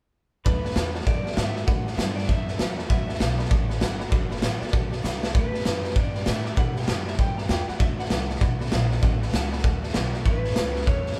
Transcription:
0.44 D2 D3 F#3 A3 B3 F#4 B4 D5 F#5 A5, kick, snare
0.63 A3 B3 F#4 D5 F#5 A5, snare
0.71 D3, snare
0.75 E2 F#3 A3 B3 F#4 D5 F#5 A5, snare, hi-hat pedal
0.93 A3 B3 F#4 D5 F#5 A5, snare
1.01 F#3, snare
1.06 F#2 A3 B3 F#4 D5 F#5 A5, kick, snare
1.24 A3 B3 F#4 D5 F#5 A5, snare
1.31 snare
1.35 G#2 D3 F#3 A3 B3 F#4 D5 E5 F#5 A5, snare, hi-hat pedal
1.55 A3 B3 F#4 D5 F#5 A5, snare
1.67 A2 D3 F#3 A3 B3 F#4 D5 F#5 B5, kick, snare
1.85 A3 B3 F#4 D5 F#5 A5, snare
1.93 D5, snare
1.97 G2 D3 F#3 A3 B3 F#4 E5 F#5 A5, snare, hi-hat pedal
2.16 A3 B3 F#4 D5 F#5 A5, snare
2.24 F#3 D5, snare
2.28 F#2 A3 B3 F#4 E5 F#5 A5, kick, snare
2.46 A3 B3 F#4 D5 F#5 A5, snare
2.58 E2 D3 F#3 A3 B3 F#4 D5 F#5 A5, snare, hi-hat pedal
2.76 A3 B3 F#4 D5 F#5 A5, snare
2.88 D2 D3 F#3 A3 B3 F#4 D5 E5 F#5 B5, kick, snare
3.06 A3 B3 F#4 D5 F#5 A5, snare
3.15 D3, snare
3.19 B1 F#3 A3 B3 F#4 D5 F#5 A5, snare, hi-hat pedal
3.37 A3 B3 F#4 D5 F#5 B5, snare
3.45 F#3 D5, snare
3.50 A1 A3 B3 F#4 F#5 A5, kick, snare
3.68 A3 B3 F#4 D5 F#5 B5, snare
3.79 G1 D3 F#3 A3 B3 F#4 D5 F#5 B5, snare, hi-hat pedal
3.98 A3 B3 F#4 D5 F#5 B5, snare
4.09 F#1 D3 F#3 A3 B3 F#4 D5 F#5 B5, kick, snare
4.29 A3 B3 F#4 D5 F#5 B5, snare
4.37 snare
4.41 A1 D3 F#3 A3 B3 F#4 D5 F#5 B5, snare, hi-hat pedal
4.60 A3 B3 F#4 D5 F#5 A5, muted upright bass stroke, snare
4.68 D5, snare
4.72 B1 F#3 A3 B3 F#4 F#5 A5, kick, snare
4.90 A3 B3 F#4 D5 F#5 A5, snare
5.02 C2 D3 F#3 A3 B3 F#4 D5 F#5 B5, snare, hi-hat pedal
5.22 A3 B3 F#4 D5 F#5 A5, snare
5.33 D2 G2 D3 E3 G3 B3 G4 B4 D5 G5 B5, kick, snare
5.52 E3 G3 B3 G4 D5 G5 A5, snare
5.60 D5, snare
5.64 F#2 G2 D3 E3 G3 B3 G4 G5 B5, snare, hi-hat pedal
5.83 E3 G3 B3 G4 D5 G5 B5, snare
5.90 snare
5.94 G2 E3 G3 B3 G4 D5 G5 A5, kick, snare
6.13 E3 G3 B3 G4 D5 G5 B5, snare
6.25 G2 A2 D3 E3 G3 B3 G4 D5 E5 G5 A5, snare, hi-hat pedal
6.44 E3 G3 B3 G4 D5 G5 D6, snare
6.56 G2 B2 D3 E3 G3 B3 G4 D5 F#5 G5 B5, kick, snare
6.75 E3 G3 B3 G4 D5 G5 B5, snare
6.82 snare
6.86 F#2 G2 D3 E3 G3 B3 G4 D5 G5 B5, snare, hi-hat pedal
7.05 G3 B3 G4 D5 E5 G5 B5, snare
7.13 snare
7.17 G2 E3 G3 B3 G4 D5 G5 B5, kick, snare
7.37 E3 G3 B3 G4 D5 G5 A5 B5, snare
7.48 E2 G2 D3 E3 G3 B3 G4 D5 G5 B5, snare, hi-hat pedal
7.67 E3 G3 B3 G4 D5 F#5 G5 B5, muted upright bass stroke, snare
7.78 D2 D3 F#3 A3 B3 F#4 D5 E5 F#5 A5, kick, snare
7.98 A3 B3 F#4 D5 F#5 B5, snare
8.05 snare
8.09 C2 D3 F#3 A3 B3 F#4 D5 F#5 A5, snare, hi-hat pedal
8.28 A3 B3 F#4 D5 F#5 A5, snare
8.35 snare
8.40 B1 F#3 A3 B3 F#4 D5 F#5 B5, kick, snare
8.59 A3 B3 F#4 D5 F#5 B5, snare
8.66 snare
8.71 A#1 D3 F#3 A3 B3 F#4 D5 F#5 A5, snare, hi-hat pedal
8.90 A3 B3 F#4 D5 F#5 A5, snare
9.01 A1 D3 F#3 A3 B3 F#4 D5 F#5 A5, kick, snare
9.21 A3 B3 F#4 D5 F#5 B5, snare
9.28 snare
9.32 C#2 D3 F#3 A3 B3 F#4 D5 F#5 A5, snare, hi-hat pedal
9.51 A3 B3 F#4 D5 F#5 B5, snare
9.59 snare
9.63 D2 F#3 A3 B3 F#4 D5 F#5 A5, kick, snare
9.82 A3 B3 F#4 D5 F#5 A5, snare
9.89 snare
9.93 B1 D3 F#3 A3 B3 F#4 D5 F#5 B5, snare, hi-hat pedal
10.12 A3 B3 F#4 D5 F#5 A5, snare
10.24 A1 A2 F#3 A3 C#4 E4 B4 C#5 E5 A5, kick, snare
10.44 A3 C#4 E4 C#5 E5 A5, snare
10.50 snare
10.56 C#2 A2 F#3 A3 C#4 E4 C#5 E5 A5, snare, hi-hat pedal
10.75 A3 C#4 E4 C#5 E5 F#5, snare
10.81 snare
10.86 E2 F#3 A3 C#4 E4 C#5 E5 A5, kick, snare
11.05 A3 C#4 E4 C#5 E5 A5, snare
11.12 snare

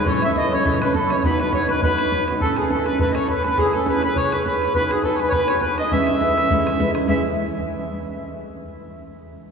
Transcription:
Already playing: A4 B4
0.06 A2 F#3 C#4 E4 A4 C#5, bodhran
0.22 C#4 E4 A4 E5, bodhran
0.33 F#3 C#4 D#5 E5, bodhran
0.37 E4 A4 D#5
0.44 bodhran
0.51 C#4 E4 A4 C#5, bodhran
0.65 A2 F#3 C#4 E4 A4, bodhran
0.81 C#4 E4 A4 B4, bodhran
0.94 F#3 C#4 E4 A4, bodhran
1.10 C#4 E4 A4 C#5, bodhran
1.24 B3 D#4 F#4 B4, bodhran
1.39 D#4 F#4 B4, bodhran
1.52 B3 D#4 F#4 B4 C#5, bodhran
1.61 bodhran
1.68 D#4 F#4 B4, bodhran
1.82 B3 D#4 F#4 B4, bodhran
1.98 D#4 F#4 B4, bodhran
2.12 B3 D#4 F#4 B4, bodhran
2.28 D#4 F#4 B4, bodhran
2.40 A2 A3 C#4 E4 A4, bodhran
2.56 C#4 E4 G#4 A4, bodhran
2.70 A3 C#4 E4 A4, bodhran
2.85 C#4 E4 A4 B4, bodhran
2.99 A2 A3 C#4 E4 A4 B4, bodhran
3.11 A4 D#5, bodhran
3.15 C#4 E4 C#5
3.27 A3 C#4 E4 A4 B4, bodhran
3.43 C#4 E4 A4 B4, bodhran
3.57 C#4 E4 G#4 C#5, bodhran
3.72 E4 G#4 A4 C#5, bodhran
3.86 C#4 E4 G#4 B4, bodhran
3.90 C#5
3.94 bodhran
4.03 E4 G#4 B4 C#5, bodhran
4.16 C#4 E4 G#4 C#5, bodhran
4.31 G#4 B4 C#5, bodhran
4.36 E4
4.44 C#4 E4 G#4 B4, bodhran
4.48 C#5
4.62 E4 G#4 C#5, bodhran
4.74 B3 D#4 F#4 B4, bodhran
4.90 F#4 G#4 B4, bodhran
4.94 D#4
5.03 B3 D#4 F#4 A4, bodhran
5.07 B4
5.11 C#5, bodhran
5.19 F#4 B4, bodhran
5.23 D#4
5.29 B4 C#5, bodhran
5.33 B3 D#4 F#4 B4
5.48 D#4 F#4 B4 C#5, bodhran
5.61 B3 D#4 F#4 B4, bodhran
5.78 D#4 F#4 B4 D#5, bodhran
5.91 E3 G#3 C#4 E4 B4 E5, bodhran
6.07 C#4 E4 B4, bodhran
6.20 G#3 C#4 E4 B4, bodhran
6.29 bodhran
6.36 C#4 E4 B4, bodhran
6.50 E3 G#3 C#4 E4 B4, bodhran
6.65 C#4 E4 B4, bodhran
6.79 G#3 C#4 E4 B4, bodhran
6.94 C#4 E4 B4, bodhran
7.07 E3 G#3 C#4 E4 B4 E5, bodhran

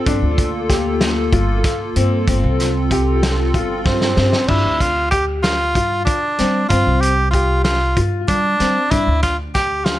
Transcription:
0.05 G1 A#3 D4 F4 A4, kick, closed hi-hat
0.22 D2
0.38 kick, closed hi-hat
0.70 G4, kick, snare, closed hi-hat
0.84 A#3 F4 A4
1.01 snare, closed hi-hat
1.32 G1 F4, kick, closed hi-hat
1.64 A#3 F4 A4, kick, snare, closed hi-hat
1.96 G2 C4, closed hi-hat
2.26 G1 C4 F4 A4, kick, closed hi-hat
2.44 C2
2.60 snare, closed hi-hat
2.91 G4, kick, closed hi-hat
3.05 C4 F4 A4
3.23 snare, closed hi-hat
3.54 G1 F4, kick, closed hi-hat
3.85 G2 C4 F4 G4, kick, snare
4.01 snare
4.17 G2 C4, snare
4.33 snare
4.48 G2 D4 E4, kick, crash
4.65 D2
4.80 F4, kick, closed hi-hat
5.11 G4, kick, closed hi-hat
5.43 F4, snare, closed hi-hat
5.75 G2 F4, kick, closed hi-hat
6.05 D4, kick, closed hi-hat
6.39 G3 C4, snare, closed hi-hat
6.69 G2 C4 F4, kick, closed hi-hat
6.87 C2
7.01 G4, closed hi-hat
7.31 F4 G4, kick, closed hi-hat
7.64 F4, snare, closed hi-hat
7.97 G2 F4, kick, closed hi-hat
8.28 G3 D4, kick, closed hi-hat
8.60 G3 C4, snare, closed hi-hat
8.91 G2 D4 E4, kick, closed hi-hat
9.07 D2
9.23 F4, kick, snare, closed hi-hat
9.54 G4, kick, snare, closed hi-hat
9.85 F4, snare, closed hi-hat

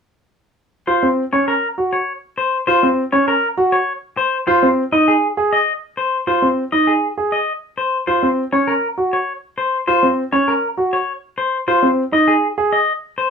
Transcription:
0.87 F4 C5
1.03 C4
1.33 C#4 C#5
1.48 A#4
1.78 F#4
1.93 C#5
2.38 C5
2.67 F4 C5
2.83 C4
3.12 C#4 C#5
3.28 A#4
3.57 F#4
3.72 C#5
4.17 C5
4.47 F4 C5
4.63 C4
4.92 D#4 D#5
5.08 G#4
5.37 G#4
5.53 D#5
5.97 C5
6.27 F4 C5
6.42 C4
6.72 D#4 D#5
6.87 G#4
7.18 G#4
7.32 D#5
7.78 C5
8.07 F4 C5
8.23 C4
8.53 C#4 C#5
8.67 A#4
8.98 F#4
9.13 C#5
9.58 C5
9.88 F4 C5
10.03 C4
10.32 C#4 C#5
10.48 A#4
10.77 F#4
10.93 C#5
11.38 C5
11.68 F4 C5
11.83 C4
12.12 D#4 D#5
12.28 G#4
12.58 G#4
12.73 D#5
13.18 C5

